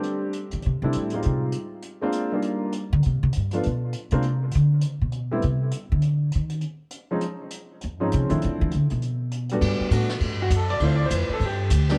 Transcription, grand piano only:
Already playing: G3 A3 C4 D4 G4
0.83 G3 A3 C4 D4 E4
1.13 G3 G#3 C4 D#4 F4
2.01 G#3 A#3 C4 D4 F4
2.32 G3 A#3 D4 D#4 F4
3.53 F3 A3 B3 D4 F4
4.12 G#3 A#3 C4 D4 F4
5.31 G3 A3 B3 C4 E4
7.11 F3 G#3 C4 C#4 D#4
8.00 F3 G#3 C4 C#4 D#4
8.29 F3 A3 C4 D4 E4
9.51 G3 A3 B3 D4 F#4
9.91 A3 B3 D4 F#4
10.42 F#4
10.56 A4
10.70 D5
10.81 A3 C4 E4 F4
10.85 C5
10.96 D5
11.06 C5
11.15 B4
11.33 A4
11.45 G4
11.90 G3 B3 D4 G4

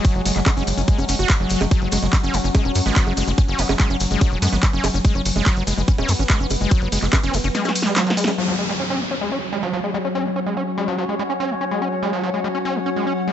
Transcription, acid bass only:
0.05 F#3
0.15 F#3
0.26 G#3
0.36 G#3
0.46 C#4
0.57 C#4
0.78 C#4
0.88 G#3
0.98 C#4
1.09 C#4
1.19 F#4
1.40 F#3
1.50 F#3
1.61 G#3
1.71 F#3
1.82 F#3
1.92 G#3
2.03 G#3
2.13 C#4
2.23 C#4
2.34 F#3
2.44 C#4
2.55 G#3
2.65 C#4
2.86 G#3
2.96 F#3
3.07 F#3
3.17 G#3
3.28 G#3
3.38 C#4
3.48 C#4
3.59 F#3
3.69 C#4
3.80 G#3
3.90 C#4
4.11 G#3
4.21 F#3
4.32 F#3
4.42 G#3
4.53 G#3
4.63 C#4
4.73 C#4
4.84 F#3
4.94 C#4
5.05 G#3
5.15 C#4
5.36 G#3
5.46 F#3
5.57 F#3
5.67 G#3
5.78 G#3
5.88 C#4
5.98 C#4
6.09 F#3
6.19 C#4
6.30 G#3
6.40 C#4
6.61 G#3
6.71 F#3
6.82 F#3
6.92 G#3
7.03 G#3
7.13 C#4
7.23 C#4
7.34 F#3
7.44 C#4
7.55 G#3
7.65 C#4
7.86 G#3
7.96 F#3
8.07 F#3
8.17 G#3
8.28 G#3
8.38 F#3
8.48 F#3
8.59 G#3
8.69 G#3
8.80 C#4
8.90 C#4
9.00 F#3
9.11 C#4
9.21 G#3
9.32 C#4
9.53 G#3
9.63 F#3
9.73 F#3
9.84 G#3
9.94 G#3
10.05 C#4
10.15 C#4
10.25 F#3
10.36 C#4
10.46 G#3
10.57 C#4
10.78 G#3
10.88 F#3
10.98 F#3
11.09 G#3
11.19 G#3
11.30 C#4
11.40 C#4
11.50 F#3
11.61 C#4
11.71 G#3
11.82 C#4
12.03 G#3
12.13 F#3
12.23 F#3
12.34 G#3
12.44 G#3
12.55 C#4
12.65 C#4
12.75 F#3
12.86 C#4
12.96 G#3
13.07 C#4
13.28 G#3

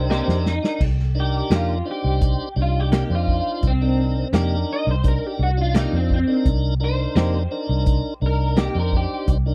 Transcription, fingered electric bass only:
Already playing: C2
0.28 F2
0.81 C2
1.50 F2
2.04 C2
2.56 C2
3.10 F2
3.63 C2
4.33 F2
4.87 C2
5.39 C2
5.93 F2
6.46 C2
7.16 F2
7.69 C2
8.22 C2
8.75 F2
9.28 C2

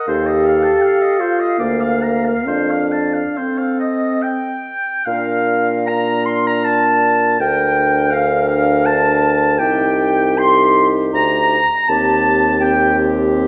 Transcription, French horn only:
0.08 G4
1.21 F4
1.60 A#3
2.47 D4
3.38 C4
5.08 D4
5.88 D4
7.40 D4
8.14 D4
9.60 D#4
10.39 D#4
11.89 C4
12.61 C4

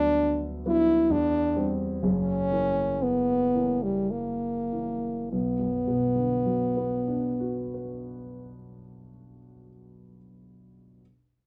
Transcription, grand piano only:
Already playing: D2 F#3 B3 D4
0.66 F#3 B3 D4
1.10 E2
1.56 G3 C4
2.03 F#1 F#2
2.51 E3 A#3 C#4
3.54 E3 A#3 C#4
4.72 E3 A#3 C#4
5.32 B1
5.59 F#2
5.87 B2
6.16 D3
6.46 F#3
6.77 B3
7.08 D4
7.40 F#4
7.74 B4

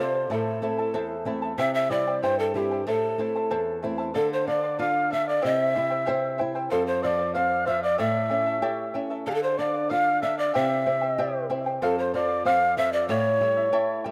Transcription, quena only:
0.02 C6
0.33 A5 B5
1.59 E6
1.75 E6
1.90 D6
2.22 C6
2.38 A5
2.55 G5 A5
2.88 A5
4.16 A5
4.32 C6
4.48 D6
4.80 F6
5.13 E6
5.27 D6
5.43 E6
6.71 A5
6.87 C6
7.02 D6 E6
7.34 F6
7.67 E6
7.83 D6
7.99 E6
9.27 G5 A5
9.33 A5
9.42 C6
9.58 D6
9.90 F6
10.22 E6
10.38 D6
10.54 E6
11.84 A5
12.01 C6
12.16 D6
12.47 F6
12.78 E6
12.94 D6
13.11 C#6

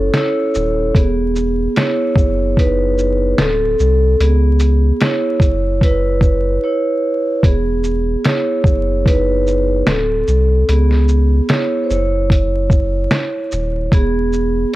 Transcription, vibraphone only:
Already playing: C#4 E4 A4 C#5
0.15 E4 C#5
0.96 B3 G#4
1.77 E4 C#5
2.58 D#4 B4
3.39 C4 A4
4.20 B3 G#4
5.02 E4 C#5
5.83 E4 B4
6.64 E4 C#5
7.45 B3 G#4
8.26 E4 C#5
9.07 D#4 B4
9.88 C4 A4
10.68 B3 G#4
11.49 E4 C#5
11.84 C5
11.91 E4 C#5
13.93 B3 G#4

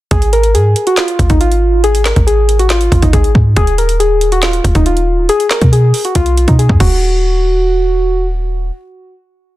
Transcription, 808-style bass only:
0.11 G#1
0.54 G#2
1.19 G#1
1.30 G#1
2.16 G#1
2.92 G#1
3.03 G#1
3.13 G#1
3.35 G#2
3.57 D#1
4.64 D#1
4.75 D#1
5.18 D1
5.62 B2
6.15 B1
6.48 B2
6.69 F#2
6.80 D#1

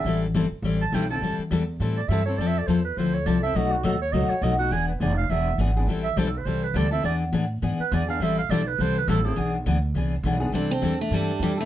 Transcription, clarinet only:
Already playing: E5
0.82 A5
0.94 G5
1.10 A5
1.97 D5
2.09 E5
2.26 C#5
2.38 D5
2.47 E5
2.58 D5
2.67 C5
2.84 B4
2.98 C5
3.15 C#5
3.26 D5
3.43 E5
3.56 D#5
3.72 F#4
3.84 A4
4.02 C#5
4.13 D#5
4.29 C#5
4.43 D#5
4.59 F#5
4.72 G#5
4.88 B4
5.01 D5
5.17 F5
5.30 E5
6.04 E5
6.17 C5
6.28 A4
6.38 B4
6.45 C5
6.64 B4
6.77 D5
6.92 E5
7.05 D5
7.80 B4
7.93 D5
8.10 F5
8.23 E5
8.38 F5
8.51 D5
8.67 B4
8.81 C5
8.98 B4
9.09 A4
9.25 G#4
10.53 D4

